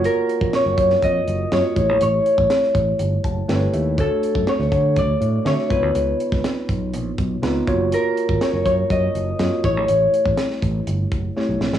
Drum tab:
HH |x-x-x-x-x-x-x-x-|x-x-x-x-x-x-x-x-|x-x-x-x-x-x-x-x-|x-x-x-x-x-x-x-x-|
SD |----o--o----o---|----oo------o---|----o-------oo--|---oo-------o---|
BD |---o--o-o-----o-|---o--o---o-----|o--o--o-o-----o-|---o--o---o---o-|

HH |x-x-x-x-x-x-x-x-|x-x-x-x-x-x-----|
SD |----o-------o---|----oo------o-oo|
BD |---o--o-o-----o-|---o--o---o-----|